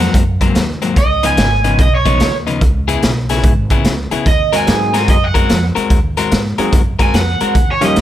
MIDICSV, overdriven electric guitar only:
0, 0, Header, 1, 2, 480
1, 0, Start_track
1, 0, Tempo, 411805
1, 1127, Time_signature, 4, 2, 24, 8
1, 9336, End_track
2, 0, Start_track
2, 0, Title_t, "Overdriven electric guitar"
2, 0, Program_c, 0, 29
2, 0, Note_on_c, 0, 78, 84
2, 160, Note_off_c, 0, 78, 0
2, 1147, Note_on_c, 0, 75, 92
2, 1448, Note_off_c, 0, 75, 0
2, 1470, Note_on_c, 0, 80, 79
2, 2080, Note_off_c, 0, 80, 0
2, 2110, Note_on_c, 0, 75, 76
2, 2255, Note_off_c, 0, 75, 0
2, 2274, Note_on_c, 0, 73, 80
2, 2727, Note_off_c, 0, 73, 0
2, 4989, Note_on_c, 0, 75, 92
2, 5289, Note_off_c, 0, 75, 0
2, 5312, Note_on_c, 0, 80, 80
2, 5920, Note_off_c, 0, 80, 0
2, 5948, Note_on_c, 0, 75, 85
2, 6108, Note_off_c, 0, 75, 0
2, 6108, Note_on_c, 0, 78, 83
2, 6563, Note_off_c, 0, 78, 0
2, 8185, Note_on_c, 0, 80, 77
2, 8330, Note_off_c, 0, 80, 0
2, 8343, Note_on_c, 0, 78, 86
2, 8954, Note_off_c, 0, 78, 0
2, 8992, Note_on_c, 0, 73, 71
2, 9134, Note_off_c, 0, 73, 0
2, 9152, Note_on_c, 0, 75, 78
2, 9293, Note_off_c, 0, 75, 0
2, 9336, End_track
0, 0, End_of_file